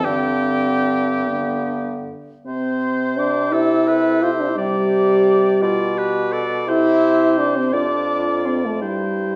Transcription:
0.04 2.12 G2 medium
0.04 1.24 D3 medium
0.04 1.28 C4 medium
0.04 2.08 G4 medium
0.04 2.04 G5 loud
1.27 2.10 D3 medium
1.27 2.12 B3 medium
2.46 4.54 C3 medium
2.46 3.19 C4 medium
2.46 3.54 C5 medium
2.46 3.20 C6 medium
3.17 3.53 D4 medium
3.17 3.55 D6 medium
3.52 4.24 E4 loud
3.52 3.89 G4 medium
3.52 3.89 A4 medium
3.52 4.59 E6 medium
3.88 4.23 A4 medium
3.88 4.25 B4 medium
4.22 4.33 F4 medium
4.22 5.63 G4 medium
4.22 4.57 C5 medium
4.32 4.42 E4 medium
4.40 4.51 D4 medium
4.49 4.58 E4 medium
4.57 5.60 C3 medium
4.57 6.33 G3 loud
4.57 5.60 D5 medium
4.57 6.31 G5 medium
5.62 6.69 B2 medium
5.62 5.97 F4 medium
5.62 6.00 D5 medium
5.97 6.34 G4 medium
5.97 6.34 B4 medium
6.32 6.69 A4 medium
6.32 6.70 D5 medium
6.67 7.75 C3 medium
6.67 7.40 E4 loud
6.67 7.75 G4 medium
6.67 7.75 C5 medium
6.67 7.41 E6 medium
7.39 7.59 D4 medium
7.39 7.57 D6 medium
7.55 7.75 C4 medium
7.55 7.74 C6 medium
7.73 8.83 F2 medium
7.73 8.47 D4 loud
7.73 8.83 F4 medium
7.73 8.81 D5 medium
7.73 8.47 D6 medium
8.45 8.67 C4 medium
8.45 8.63 C6 medium
8.64 8.84 A3 medium
8.64 8.83 A5 medium
8.82 9.36 G2 medium
8.82 9.36 G3 medium
8.82 9.36 E4 medium
8.82 9.36 C5 soft
8.82 9.36 G5 medium

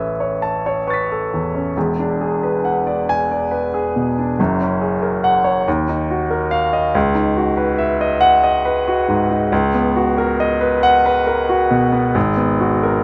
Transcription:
0.00 1.72 A1 medium
0.00 1.55 C#4 soft
0.00 1.12 A4 soft
0.00 0.12 B4 soft
0.00 0.33 E5 soft
0.20 0.56 C#5 soft
0.42 0.78 A5 medium
0.66 1.01 C#5 medium
0.87 1.23 B4 soft
0.87 1.72 C#6 soft
0.87 1.73 A6 soft
0.94 1.75 B6 soft
1.12 1.46 A4 soft
1.34 1.68 E2 soft
1.55 1.76 C#4 soft
1.76 4.35 E1 medium
1.76 4.36 E2 medium
1.99 2.33 D4 soft
2.21 2.56 G#4 soft
2.43 2.78 B4 soft
2.65 3.00 F#5 medium
2.87 3.22 D5 medium
3.09 3.44 G#5 medium
3.31 3.66 D5 medium
3.51 3.87 B4 medium
3.74 4.09 G#4 medium
3.96 4.30 B2 soft
4.19 4.40 D4 soft
4.39 5.63 F#1 medium
4.39 5.63 F#2 medium
4.61 4.95 C#4 soft
4.81 5.15 G#4 soft
5.02 5.36 A#4 medium
5.24 5.58 F#5 medium
5.44 5.66 C#5 medium
5.68 6.92 D#2 medium
5.89 6.22 D#4 medium
6.10 6.44 F#4 medium
6.31 6.65 A#4 medium
6.51 6.86 F5 medium
6.73 6.95 D#5 medium
6.95 9.47 C#2 medium
7.15 7.50 D#4 medium
7.37 7.72 F#4 medium
7.57 7.93 B4 medium
7.78 8.14 E5 medium
8.01 8.36 D#5 medium
8.21 8.57 F#5 medium
8.44 8.79 D#5 medium
8.65 9.00 B4 medium
8.88 9.22 F#4 medium
9.08 9.43 G#2 medium
9.30 9.52 D#4 medium
9.52 12.12 C#2 medium
9.74 10.08 B3 medium
9.96 10.30 F#4 medium
10.18 10.52 A#4 medium
10.40 10.74 D#5 medium
10.61 10.95 B4 medium
10.83 11.18 F#5 medium
11.06 11.40 B4 medium
11.27 11.62 A#4 medium
11.49 11.84 F#4 medium
11.71 12.06 B2 medium
11.92 12.15 B3 medium
12.15 13.04 G#1 medium
12.37 12.74 B3 soft
12.60 12.97 F#4 medium
12.83 13.04 A#4 medium

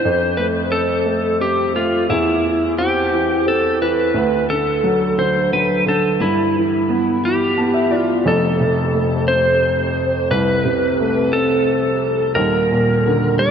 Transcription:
0.00 0.37 C5 medium
0.05 2.06 F2 medium
0.37 1.04 A3 soft
0.37 0.46 B4 medium
0.71 1.38 C4 soft
0.71 1.41 A4 medium
1.05 1.73 A3 medium
1.40 2.06 C4 soft
1.40 1.76 G4 medium
1.75 2.08 A3 soft
1.75 2.10 F4 medium
2.10 4.11 E2 medium
2.10 2.74 E4 medium
2.44 3.10 E3 soft
2.78 3.45 C4 soft
2.78 3.48 G4 medium
3.12 3.80 E3 soft
3.46 4.12 C4 soft
3.46 3.82 A4 medium
3.81 4.14 E3 soft
3.81 4.46 B4 medium
4.14 6.16 D2 medium
4.50 5.17 D3 soft
4.50 5.20 A4 medium
4.84 5.51 F#3 medium
5.18 5.85 D3 medium
5.18 5.53 C5 medium
5.53 6.18 F#3 soft
5.53 5.84 B4 medium
5.86 6.19 D3 soft
5.86 6.19 A4 medium
6.20 8.22 G2 medium
6.20 7.88 E4 medium
6.56 7.22 E3 soft
6.89 7.56 B3 soft
7.23 7.89 E3 medium
7.23 7.98 G4 medium
7.58 8.24 B3 medium
7.58 7.73 A5 medium
7.74 7.90 E5 medium
7.90 8.24 E3 soft
7.90 8.23 D5 medium
7.98 8.27 F4 medium
8.25 10.27 F1 medium
8.25 10.27 F2 medium
8.25 9.25 A4 medium
8.60 9.93 C3 soft
8.94 10.27 A3 medium
9.28 10.61 C4 medium
9.28 10.31 C5 medium
10.31 12.33 C2 medium
10.31 11.37 B4 medium
10.65 11.98 C3 medium
11.00 12.33 A3 medium
11.33 12.35 C4 medium
11.33 12.35 A4 medium
12.35 13.51 D#1 medium
12.35 13.51 D#2 medium
12.35 13.42 A#4 medium
12.71 13.51 A#2 medium
13.06 13.51 D3 medium
13.39 13.51 G3 medium
13.39 13.51 D5 loud

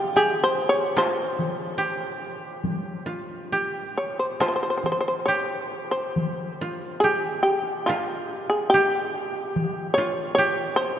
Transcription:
0.00 0.96 F4 medium
0.00 0.13 G4 medium
0.00 0.16 G4 medium
0.16 1.78 G4 medium
0.16 0.41 G#4 medium
0.44 0.68 C5 medium
0.69 0.95 C#5 medium
0.97 3.06 F4 medium
0.97 3.49 C5 medium
0.97 taiko rim medium
1.39 taiko high soft
1.78 3.52 G4 medium
2.64 taiko high medium
3.06 4.40 F4 medium
3.52 5.28 G4 medium
3.98 4.18 C#5 medium
4.19 4.39 C5 medium
4.40 6.59 F4 medium
4.40 4.47 C5 medium
4.40 taiko rim medium
4.48 4.55 C5 soft
4.56 4.62 C5 soft
4.63 4.69 C5 soft
4.70 4.76 C5 medium
4.78 4.85 C5 soft
4.84 4.91 C5 medium
4.84 taiko high soft
4.92 4.99 C5 soft
5.01 5.07 C5 medium
5.08 5.15 C5 soft
5.26 7.04 G4 medium
5.26 5.88 C#5 medium
5.91 6.98 C5 medium
6.16 taiko high medium
6.61 7.89 F4 medium
7.00 8.74 G4 medium
7.00 7.40 G#4 medium
7.43 7.83 G4 medium
7.86 8.47 F4 medium
7.86 9.97 F4 medium
7.86 taiko rim medium
8.50 8.69 G#4 medium
8.70 9.92 G4 medium
8.74 10.38 G4 medium
9.56 taiko high medium
9.94 10.34 C#5 medium
9.98 10.99 F4 medium
10.35 10.99 G4 medium
10.35 10.75 C#5 loud
10.76 10.99 C5 loud

